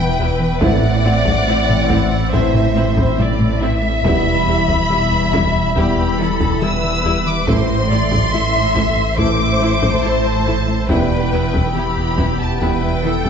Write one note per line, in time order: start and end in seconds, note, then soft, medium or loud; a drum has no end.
0.00 0.52 E1 medium
0.00 0.64 E1 medium
0.00 0.52 E2 medium
0.00 0.11 E3 medium
0.00 0.58 E3 medium
0.00 0.62 B3 medium
0.00 0.57 E4 medium
0.00 0.60 B4 medium
0.00 0.57 E5 medium
0.00 0.62 G5 medium
0.19 0.32 E2 medium
0.19 0.28 B3 soft
0.19 0.28 E4 soft
0.40 0.53 E3 medium
0.61 1.37 A1 medium
0.61 4.06 A1 medium
0.61 0.74 A2 medium
0.61 1.37 A2 medium
0.61 4.00 E3 medium
0.61 0.94 E3 medium
0.61 0.94 A3 medium
0.61 0.93 C4 medium
0.61 4.04 C4 medium
0.61 0.70 C4 medium
0.61 4.00 E4 medium
0.61 0.93 E4 medium
0.61 0.69 E4 medium
0.61 2.33 D5 medium
0.61 4.00 E5 medium
0.61 2.30 F#5 medium
0.61 taiko medium
0.83 0.96 A2 medium
1.05 1.18 A2 medium
1.05 1.13 C4 soft
1.05 1.13 E4 soft
1.25 1.39 A2 medium
1.25 taiko medium
1.47 2.23 A1 medium
1.47 2.23 A2 medium
1.47 1.60 A3 medium
1.47 1.56 C4 soft
1.47 1.55 E4 soft
1.69 1.82 A2 medium
1.69 taiko low-mid soft
1.90 2.03 A2 medium
1.90 1.98 C4 medium
1.90 1.98 E4 medium
1.90 taiko medium
2.11 2.24 A2 medium
2.33 3.09 A1 medium
2.33 3.09 A2 medium
2.33 2.46 A2 medium
2.33 2.65 E3 medium
2.33 2.65 A3 medium
2.33 2.41 C4 medium
2.33 2.66 C4 medium
2.33 2.41 E4 medium
2.33 2.65 E4 medium
2.33 2.74 C5 medium
2.33 3.18 E5 medium
2.33 taiko medium
2.54 2.67 A2 medium
2.54 taiko low-mid soft
2.75 2.88 A3 medium
2.75 2.84 C4 medium
2.75 2.84 E4 medium
2.75 3.17 C5 medium
2.75 taiko low-mid soft
2.96 3.09 A2 medium
2.96 taiko medium
3.18 3.95 A1 medium
3.18 3.94 A2 medium
3.18 3.31 A3 medium
3.18 3.27 C4 medium
3.18 3.27 E4 medium
3.18 3.62 D5 medium
3.18 taiko low-mid medium
3.39 3.52 A3 medium
3.39 taiko low-mid soft
3.61 3.74 A2 medium
3.61 3.70 C4 medium
3.61 3.70 E4 medium
3.61 4.90 E5 medium
3.82 3.95 A3 medium
4.04 7.49 E1 medium
4.04 4.81 E1 medium
4.04 4.17 E2 medium
4.04 4.80 E2 medium
4.04 4.36 E3 medium
4.04 7.43 E3 medium
4.04 7.47 G3 medium
4.04 4.36 G3 medium
4.04 4.13 G3 medium
4.04 4.37 B3 medium
4.04 7.43 E4 medium
4.04 4.37 E4 medium
4.04 4.13 E4 medium
4.04 7.43 E5 medium
4.04 5.72 B5 medium
4.04 taiko medium
4.25 4.38 E2 medium
4.47 4.60 E2 medium
4.47 4.57 G3 soft
4.47 4.56 E4 medium
4.68 4.81 E2 medium
4.68 taiko medium
4.90 5.66 E1 medium
4.90 5.66 E2 medium
4.90 5.03 E3 medium
4.90 4.99 G3 medium
4.90 4.99 E4 medium
4.90 5.75 E5 medium
5.11 5.24 E2 medium
5.33 5.46 E2 medium
5.33 5.42 G3 medium
5.33 5.41 E4 medium
5.33 taiko medium
5.54 5.67 E2 medium
5.75 6.52 E1 medium
5.75 5.89 E2 medium
5.75 6.52 E2 medium
5.75 6.07 E3 medium
5.75 6.08 G3 medium
5.75 5.85 G3 medium
5.75 6.08 B3 medium
5.75 5.85 E4 medium
5.75 6.08 E4 medium
5.75 6.19 G4 medium
5.75 6.61 B5 medium
5.75 taiko medium
5.96 6.10 E2 medium
6.19 6.31 E3 medium
6.19 6.27 G3 medium
6.19 6.27 E4 medium
6.19 6.62 A4 medium
6.40 6.53 E2 medium
6.40 taiko medium
6.62 7.37 E1 medium
6.62 7.38 E2 medium
6.62 6.75 E3 medium
6.62 6.70 G3 medium
6.62 6.70 E4 medium
6.62 7.48 B4 medium
6.62 7.26 E6 medium
6.83 6.96 E3 medium
7.05 7.18 E2 medium
7.05 7.13 G3 soft
7.05 7.13 E4 medium
7.26 7.39 E3 medium
7.26 7.48 D6 medium
7.47 10.92 A1 medium
7.47 8.24 A1 medium
7.47 8.23 A2 medium
7.47 7.61 A2 medium
7.47 10.86 E3 medium
7.47 7.79 E3 medium
7.47 10.90 A3 medium
7.47 7.79 A3 medium
7.47 7.56 A3 medium
7.47 7.80 A3 medium
7.47 10.86 E4 medium
7.47 7.56 E4 medium
7.47 7.80 E4 medium
7.47 7.90 C5 medium
7.47 10.87 E5 medium
7.47 9.19 C6 loud
7.47 taiko medium
7.70 7.82 A2 medium
7.90 8.03 A2 medium
7.90 7.99 A3 soft
7.90 7.99 E4 medium
7.90 8.32 D5 medium
8.11 8.25 A2 medium
8.11 taiko medium
8.32 9.09 A1 medium
8.32 9.09 A2 medium
8.32 8.41 A3 medium
8.32 8.46 A3 medium
8.32 8.41 E4 medium
8.32 9.18 E5 medium
8.54 8.67 A2 medium
8.75 8.89 A2 medium
8.75 8.83 A3 soft
8.75 8.83 E4 medium
8.75 taiko medium
8.97 9.10 A2 medium
9.17 9.95 A1 medium
9.17 9.31 A2 medium
9.17 9.95 A2 medium
9.17 9.51 E3 medium
9.17 9.27 A3 medium
9.17 9.51 A3 medium
9.17 9.27 E4 medium
9.17 9.51 E4 medium
9.17 10.90 C5 medium
9.17 10.03 D6 medium
9.17 taiko medium
9.39 9.52 A2 medium
9.61 9.74 A3 medium
9.61 9.69 A3 medium
9.61 9.69 E4 medium
9.82 9.96 A2 medium
9.82 taiko medium
10.04 10.80 A1 medium
10.04 10.80 A2 medium
10.04 10.17 A3 soft
10.04 10.12 A3 medium
10.04 10.12 E4 soft
10.04 10.90 A5 medium
10.25 10.38 A3 medium
10.47 10.60 A2 medium
10.47 10.55 A3 medium
10.47 10.55 E4 medium
10.68 10.81 A3 medium
10.89 11.66 E1 medium
10.89 13.30 E1 medium
10.89 11.03 E2 medium
10.89 11.66 E2 medium
10.89 13.30 E3 medium
10.89 11.22 E3 medium
10.89 11.22 G3 medium
10.89 13.30 B3 medium
10.89 10.98 B3 medium
10.89 11.22 B3 medium
10.89 10.98 E4 medium
10.89 11.22 E4 medium
10.89 13.30 E4 medium
10.89 11.76 B4 medium
10.89 13.30 E5 medium
10.89 11.74 G5 medium
10.89 taiko medium
11.11 11.24 E2 medium
11.32 11.45 E2 medium
11.32 11.41 B3 soft
11.32 11.41 E4 soft
11.53 11.67 E2 medium
11.53 taiko medium
11.75 12.52 E1 medium
11.75 12.51 E2 medium
11.75 11.88 E3 medium
11.75 11.84 B3 soft
11.75 11.84 E4 soft
11.75 12.59 G4 medium
11.75 12.40 B5 medium
11.97 12.10 E2 soft
12.18 12.32 E2 medium
12.18 12.27 B3 soft
12.18 12.26 E4 soft
12.18 taiko medium
12.40 12.53 E2 soft
12.40 12.62 A5 medium
12.60 13.30 E1 medium
12.60 12.74 E2 medium
12.60 13.30 E2 medium
12.60 12.94 E3 medium
12.60 12.94 G3 medium
12.60 12.70 B3 medium
12.60 12.94 B3 medium
12.60 12.69 E4 medium
12.60 12.94 E4 medium
12.60 13.05 B4 medium
12.60 13.30 G5 medium
12.60 taiko medium
12.83 12.96 E2 medium
13.05 13.17 E3 soft
13.05 13.13 B3 soft
13.05 13.13 E4 soft
13.05 13.30 A4 medium
13.25 13.30 E2 medium
13.25 taiko medium